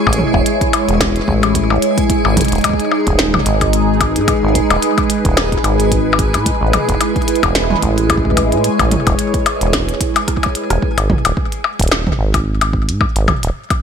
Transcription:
Already playing: G#3 E4 G#4 B4 C#5
0.07 A1, kick, percussion blips
0.13 closed hi-hat
0.19 mid tom
0.34 E1, kick, percussion blips
0.46 closed hi-hat
0.61 kick, closed hi-hat
0.73 closed hi-hat, percussion blips
0.89 E1, closed hi-hat
1.01 kick, snare, closed hi-hat, percussion blips
1.16 closed hi-hat
1.28 A1, kick
1.43 closed hi-hat, percussion blips
1.55 kick, closed hi-hat
1.70 A1, percussion blips
1.82 closed hi-hat
1.98 kick, closed hi-hat
2.10 G#3, kick, closed hi-hat
2.20 D#4
2.25 G#1 G#4, percussion blips
2.37 kick, closed hi-hat, mid tom
2.41 closed hi-hat
2.45 closed hi-hat
2.48 closed hi-hat
2.52 D#1, closed hi-hat
2.55 closed hi-hat
2.58 closed hi-hat
2.61 closed hi-hat
2.64 kick, closed hi-hat, percussion blips
2.69 kick
2.73 kick
2.80 closed hi-hat
2.92 percussion blips
3.07 D#1, kick, closed hi-hat
3.19 snare, closed hi-hat
3.34 kick, mid tom, percussion blips
3.46 G#1, closed hi-hat
3.61 kick, closed hi-hat, percussion blips
3.73 closed hi-hat
3.89 B4
4.01 kick, closed hi-hat, percussion blips
4.16 G#2, closed hi-hat
4.28 kick, closed hi-hat, percussion blips
4.43 G#1
4.55 kick, closed hi-hat
4.70 D#1, closed hi-hat, percussion blips
4.82 closed hi-hat
4.98 kick, closed hi-hat, percussion blips
5.10 closed hi-hat
5.25 D#1, kick, closed hi-hat
5.37 snare, closed hi-hat, percussion blips
5.52 kick, closed hi-hat
5.64 G#1, closed hi-hat, percussion blips
5.80 closed hi-hat
5.92 kick, closed hi-hat
6.13 percussion blips
6.19 kick, closed hi-hat
6.34 A2, closed hi-hat, percussion blips
6.46 G#3, kick, closed hi-hat
6.61 A1
6.73 E4, closed hi-hat, mid tom, percussion blips
6.89 E1, kick, closed hi-hat
7.01 closed hi-hat, percussion blips
7.16 kick, closed hi-hat
7.22 closed hi-hat
7.28 closed hi-hat
7.35 closed hi-hat
7.43 E1, kick, closed hi-hat, percussion blips
7.55 snare, closed hi-hat
7.70 mid tom
7.72 mid tom
7.76 mid tom
7.78 mid tom
7.80 A1, kick, closed hi-hat, mid tom
7.98 closed hi-hat
8.10 kick, closed hi-hat, percussion blips
8.17 kick
8.25 kick
8.31 kick
8.37 kick, closed hi-hat, percussion blips
8.43 C#5
8.52 A2, closed hi-hat
8.64 closed hi-hat
8.79 A1, kick, closed hi-hat, percussion blips
8.91 closed hi-hat, mid tom
9.07 E1, kick, closed hi-hat, percussion blips
9.19 closed hi-hat
9.34 kick, closed hi-hat
9.46 closed hi-hat, percussion blips
9.61 E1, closed hi-hat
9.73 kick, snare, closed hi-hat, percussion blips
9.89 closed hi-hat
10.01 kick, closed hi-hat
10.16 closed hi-hat, percussion blips
10.28 kick, cross-stick, closed hi-hat
10.37 kick
10.43 kick, closed hi-hat, percussion blips
10.55 closed hi-hat
10.70 E1, cross-stick, closed hi-hat
10.82 kick
10.98 G#1, closed hi-hat, percussion blips
11.10 kick, mid tom
11.25 D#1, closed hi-hat, percussion blips
11.37 kick
11.52 closed hi-hat
11.64 percussion blips
11.79 D#1, kick, closed hi-hat
11.82 closed hi-hat
11.88 snare, closed hi-hat, percussion blips, shaker
12.07 kick, mid tom
12.19 G#1
12.34 kick, closed hi-hat, percussion blips
12.61 closed hi-hat, percussion blips
12.73 kick
12.89 G#2, closed hi-hat
13.01 kick, percussion blips
13.16 G#1, closed hi-hat
13.28 kick, mid tom, percussion blips, shaker
13.43 D#1, closed hi-hat
13.70 kick, closed hi-hat, percussion blips

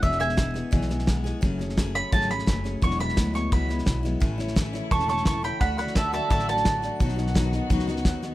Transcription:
0.02 E1 E2 B2 E3 G#3 B3 G#4 E5, kick, snare
0.12 snare
0.19 E3 G#3 B3 G#4 E5 G#5, snare
0.29 snare
0.37 E3 G#3 B3 G#4, kick, snare, hi-hat pedal
0.54 E3 G#3 B3 G#4, snare
0.71 B1 E2 B2 E3 G#3 B3 G#4, kick, snare
0.82 snare
0.89 E3 G#3 B3 G#4, snare
0.99 snare
1.06 E3 G#3 B3 G#4, kick, snare, hi-hat pedal
1.24 E3 G#3 B3 G#4, snare
1.41 F#1 F#2 C#3 F#3 A3 C#4 G#4, kick, snare
1.59 F#3 A3 C#4 G#4, snare
1.69 snare
1.77 F#3 A3 C#4 G#4, kick, snare, hi-hat pedal
1.95 F#3 A3 C#4 G#4 B5, snare
2.12 G#1 F#2 C#3 F#3 A3 C#4 G#4 A5, kick, snare
2.21 snare
2.29 F#3 A3 C#4 G#4 B5, snare
2.39 snare
2.46 F#1 F#3 A3 C#4 G#4, kick, snare, hi-hat pedal
2.64 F#3 A3 C#4 G#4, snare
2.82 E1 E2 B2 F#3 G#3 B3 E4 C#6, kick, snare
2.91 snare
2.99 F#3 G#3 B3 E4 B5, snare
3.09 snare
3.16 D2 F#3 G#3 B3 E4, kick, snare, hi-hat pedal
3.34 F#3 G#3 B3 E4 C#6, snare
3.52 C#2 E2 B2 F#3 G#3 B3 E4 B5, kick, snare
3.69 F#3 G#3 B3 E4, snare
3.79 snare
3.85 B1 F#3 G#3 B3 E4, kick, snare, hi-hat pedal
4.03 F#3 G#3 B3 E4, snare
4.20 A1 A2 C#3 E3 A3 C#4 E4, kick, snare
4.38 A3 C#4 E4, snare
4.48 snare
4.56 E3 A3 C#4 E4, kick, snare, hi-hat pedal
4.73 A3 C#4 E4, snare
4.91 E1 A2 E3 A3 C#4 E4 A5 C#6, kick, snare
5.00 snare
5.08 A3 C#4 E4 A5 C#6, snare
5.17 snare
5.25 E3 A3 C#4 E4 A5 C#6, kick, snare, hi-hat pedal
5.43 A3 C#4 E4 G5 B5, snare
5.61 D2 D3 F#3 A3 D4 F#4 F#5 B5, kick, snare
5.78 A3 D4 F#4 F#5 B5, snare
5.87 snare
5.95 D3 A3 D4 F#4 E5 A5, kick, snare, hi-hat pedal
6.13 A3 D4 F#4 E5 A5, snare
6.30 A1 D3 A3 D4 F#4 E5 A5, kick, snare
6.39 snare
6.48 A3 D4 F#4 A5, snare
6.57 snare
6.65 D3 A3 D4 F#4, kick, snare, hi-hat pedal
6.82 A3 D4 F#4, snare
7.00 B1 B2 D#3 F#3 B3 D#4 F#4, kick, snare
7.09 snare
7.16 B3 D#4 F#4, snare
7.27 snare
7.34 F#3 B3 D#4 F#4, kick, snare, hi-hat pedal
7.52 B3 D#4 F#4, snare
7.70 C#2 B2 F#3 B3 D#4 F#4, kick, snare
7.79 snare
7.88 B3 D#4 F#4, snare
7.96 snare
8.05 D#2 F#3 B3 D#4 F#4, kick, snare, hi-hat pedal
8.22 B3 D#4 F#4, snare

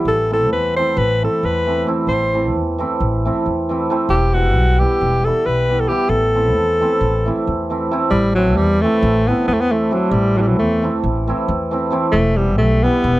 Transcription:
Already playing: E3 G3
0.05 A1 A4
0.30 E3 A3 C4 E4 A4
0.50 E2 B4
0.76 E3 A3 C4 E4 C5
0.97 A1 B4
1.22 E3 A3 C4 E4 A4
1.43 E2 B4
1.67 E3 A3 C4 E4
1.86 E3 A3 C4 E4
2.07 A1 C5
2.34 E3 A3 C4 E4
2.54 E2
2.78 E3 A3 C4 E4
3.00 A1
3.25 E3 A3 C4 E4
3.46 E2
3.69 E3 A3 C4 E4
3.90 E3 A3 C4 E4
4.09 E1 G4
4.34 E3 G3 B3 E4 F#4
4.55 B1
4.79 E3 G3 B3 E4 G4
5.01 E1
5.24 E3 G3 B3 E4 A4
5.46 B1 B4
5.69 E3 G3 B3 E4
5.80 A4
5.88 E3 G3 B3 E4 G4
6.09 A1 A4
6.34 E3 A3 C4 E4
6.55 E2
6.80 E3 A3 C4 E4
7.01 A1
7.26 E3 A3 C4 E4
7.47 E2
7.70 E3 A3 C4 E4
7.91 E3 A3 C4 E4
8.10 A1 G3
8.35 E3 F#3 A3 C4 E4
8.56 E2 G3
8.81 E3 A3 C4 E4
9.03 A1
9.28 E3 A3 B3 C4 E4
9.48 E2 B3
9.53 A3
9.61 B3
9.71 E3 A3 C4 E4
9.91 E3 F#3 A3 C4 E4
10.11 A1 G3
10.36 E3 F#3 A3 C4 E4
10.41 G3
10.48 F#3
10.59 E2 A3
10.82 E3 A3 C4 E4
11.04 A1
11.27 E3 A3 C4 E4
11.48 E2
11.71 E3 A3 C4 E4
11.91 E3 A3 C4 E4
12.12 E1 A3
12.36 E3 G3 B3 E4
12.58 B1 A3
12.83 E3 G3 B3 E4
13.04 E1

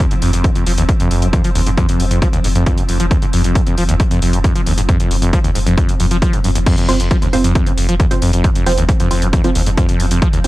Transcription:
Already playing: F3 C4
0.11 G#2, closed hi-hat
0.22 F1 F2, open hi-hat
0.33 F1 F2, closed hi-hat
0.44 F#2, kick, closed hi-hat
0.55 F2, closed hi-hat
0.66 F1 F3, open hi-hat
0.78 F1 D#2, closed hi-hat
0.89 G#2, kick, closed hi-hat
1.00 F2, closed hi-hat
1.11 F1 F2, open hi-hat
1.22 F1 F#2, closed hi-hat
1.33 F2, kick, closed hi-hat
1.44 F3, closed hi-hat
1.55 F1 D#2, open hi-hat
1.66 F1 G#2, closed hi-hat
1.78 F2, kick, closed hi-hat
1.89 F2, closed hi-hat
2.00 F1 F#2, open hi-hat
2.11 F1 F2, closed hi-hat
2.22 F3, kick, closed hi-hat
2.33 D#2, closed hi-hat
2.44 F1 G#2, open hi-hat
2.55 F1 F2, closed hi-hat
2.66 kick, closed hi-hat
2.78 F#2, closed hi-hat
2.89 F1 F2, open hi-hat
3.00 F1 F3, closed hi-hat
3.11 D#2, kick, closed hi-hat
3.22 G#2, closed hi-hat
3.33 F1 F2, open hi-hat
3.44 F1 F2, closed hi-hat
3.55 F#2, kick, closed hi-hat
3.67 F2, closed hi-hat
3.77 F1 F3, open hi-hat
3.89 F1 D#2, closed hi-hat
4.00 G#2, kick, closed hi-hat
4.11 F2, closed hi-hat
4.22 F1 F2, open hi-hat
4.33 F1 F#2, closed hi-hat
4.44 F2, kick, closed hi-hat
4.55 F3, closed hi-hat
4.66 F1 D#2, open hi-hat
4.78 F1 G#2, closed hi-hat
4.89 F2, kick, closed hi-hat
5.00 F2, closed hi-hat
5.11 F1 F#2, open hi-hat
5.22 F1 F2, closed hi-hat
5.33 F3, kick, closed hi-hat
5.44 D#2, closed hi-hat
5.55 F1 G#2, open hi-hat
5.67 F1 F2, closed hi-hat
5.78 kick, closed hi-hat
5.89 F#2, closed hi-hat
6.00 F1 F2, open hi-hat
6.11 F1 F3, closed hi-hat
6.22 F3, kick, closed hi-hat
6.33 F2, closed hi-hat
6.44 F1 F#2, open hi-hat
6.55 F1 D#2, closed hi-hat
6.66 F2 F3 C4, kick, closed hi-hat, crash
6.78 F2, closed hi-hat
6.89 F1 F#2 C4 F4 C5, open hi-hat
7.00 F1 F2, closed hi-hat
7.11 F3, kick, closed hi-hat
7.22 D#2, closed hi-hat
7.33 F1 G#2 C4 F4 C5, open hi-hat
7.44 F1 F2, closed hi-hat
7.55 F2, kick, closed hi-hat
7.67 F#2, closed hi-hat
7.78 F1 F2, open hi-hat
7.89 F1 F3, closed hi-hat
8.00 D#2, kick, closed hi-hat
8.11 G#2 C4 F4 C5, closed hi-hat
8.22 F1 F2, open hi-hat
8.33 F1 F2, closed hi-hat
8.44 F#2, kick, closed hi-hat
8.55 F2, closed hi-hat
8.66 F1 F3 C4 F4 C5, open hi-hat
8.78 F1 D#2, closed hi-hat
8.89 G#2, kick, closed hi-hat
9.00 F2, closed hi-hat
9.11 F1 F2 C4 F4 C5, open hi-hat
9.22 F1 F#2, closed hi-hat
9.33 F2, kick, closed hi-hat
9.44 F3 C4 F4 C5, closed hi-hat
9.55 F1 D#2, open hi-hat
9.66 F1 G#2, closed hi-hat
9.78 F2, kick, closed hi-hat
9.89 F2, closed hi-hat
10.00 F1 F#2, open hi-hat
10.11 F1 F2, closed hi-hat
10.22 F3, kick, closed hi-hat
10.33 D#2, closed hi-hat
10.44 F1 G#2 C4 F4 C5, open hi-hat

